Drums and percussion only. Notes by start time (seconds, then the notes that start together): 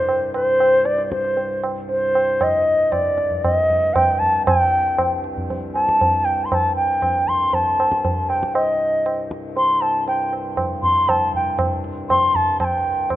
0.09 tabla na
0.34 tabla na
0.60 tabla na
0.85 tabla te
0.98 tabla te
1.12 tabla ke
1.24 tabla te
1.37 tabla tin
1.63 tabla na
1.89 tabla tin
2.15 tabla na
2.41 tabla na, tabla ge
2.92 tabla na, tabla ge
3.18 tabla te
3.31 tabla ge
3.44 tabla na, tabla ge
3.70 tabla ge
3.96 tabla na, tabla ge
4.22 tabla ge
4.47 tabla na, tabla ge
4.98 tabla na, tabla ge
5.24 tabla te
5.37 tabla ge
5.50 tabla tin, tabla ge
5.75 tabla na
5.89 tabla ke
6.01 tabla tin, tabla ge
6.52 tabla na, tabla ge
7.02 tabla na, tabla ge
7.28 tabla ge
7.53 tabla tin, tabla ge
7.80 tabla na
7.92 tabla ke
8.05 tabla tin, tabla ge
8.30 tabla na
8.43 tabla ke
8.55 tabla na
9.06 tabla na
9.31 tabla ke
9.57 tabla tin
9.82 tabla na
10.08 tabla tin
10.33 tabla na
10.57 tabla na, tabla ge
10.83 tabla ge
11.09 tabla na, tabla ge
11.34 tabla ge
11.59 tabla na, tabla ge
11.84 tabla te
12.10 tabla na, tabla ge
12.35 tabla ge
12.60 tabla na, tabla ge
13.10 tabla na, tabla ge